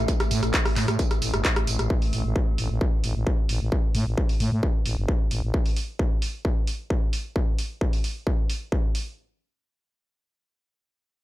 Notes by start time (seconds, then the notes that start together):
Already playing: A2 A3
0.08 kick, closed hi-hat, tambourine
0.20 cross-stick, closed hi-hat, tambourine
0.31 A2, snare, closed hi-hat, open hi-hat, tambourine
0.43 A1, cross-stick, closed hi-hat, tambourine
0.54 kick, snare, clap, closed hi-hat, tambourine
0.65 cross-stick, closed hi-hat, open hi-hat
0.76 A2, clap, open hi-hat, tambourine
0.88 A2, cross-stick, closed hi-hat, tambourine
0.99 kick, closed hi-hat, tambourine
1.11 cross-stick, closed hi-hat, tambourine
1.22 A1, closed hi-hat, open hi-hat, tambourine
1.34 G1, cross-stick, closed hi-hat, tambourine
1.45 kick, snare, clap, closed hi-hat, tambourine
1.56 cross-stick, closed hi-hat
1.67 A1, closed hi-hat, open hi-hat, tambourine
1.79 A1, cross-stick, closed hi-hat, tambourine
1.90 kick
2.02 open hi-hat
2.13 A1, open hi-hat
2.25 A1
2.36 kick
2.58 A1, open hi-hat
2.70 A1
2.81 kick
3.04 A1, open hi-hat
3.16 A1
3.27 kick
3.49 A1, open hi-hat
3.61 A1
3.72 kick
3.95 A2, open hi-hat
4.06 A1
4.17 kick
4.29 open hi-hat
4.40 A2, open hi-hat
4.52 A2
4.63 kick
4.86 A1, open hi-hat
4.98 G1
5.08 kick
5.31 A1, open hi-hat
5.43 A1
5.54 kick
5.66 open hi-hat
5.76 open hi-hat
5.99 kick
6.22 open hi-hat
6.45 kick
6.67 open hi-hat
6.90 kick
7.13 open hi-hat
7.36 kick
7.59 open hi-hat
7.81 kick
7.93 open hi-hat
8.04 open hi-hat
8.27 kick
8.50 open hi-hat
8.72 kick
8.95 open hi-hat